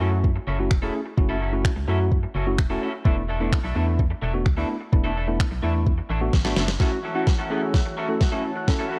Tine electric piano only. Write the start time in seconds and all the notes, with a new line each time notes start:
0.00 A3 C#4 E4 F#4
0.59 A3 C#4 E4 F#4
0.82 A3 C#4 E4 G#4
1.18 A3 C#4 E4 F#4
1.53 A3 C#4 E4 F#4
1.88 A3 C#4 E4 F#4
2.46 A3 C#4 E4 F#4
2.70 A3 C#4 E4 F#4
3.05 A3 B3 D4 E4
3.40 A3 B3 D4 E4
3.75 A3 B3 D4 E4
4.34 A3 B3 D4 F#4
4.57 A3 B3 D4 E4
4.92 A3 B3 D4 E4
5.27 A3 B3 D4 E4
5.63 A3 B3 D4 E4
6.21 A3 B3 D4 F#4
6.45 A3 B3 D4 F#4
6.80 A3 C#4 E4 F#4
7.15 A3 C#4 E4 F#4
7.50 A3 C#4 E4 G#4
8.09 A3 C#4 E4 A4
8.32 A3 C#4 E4 F#4
8.67 A3 C#4 E4 A4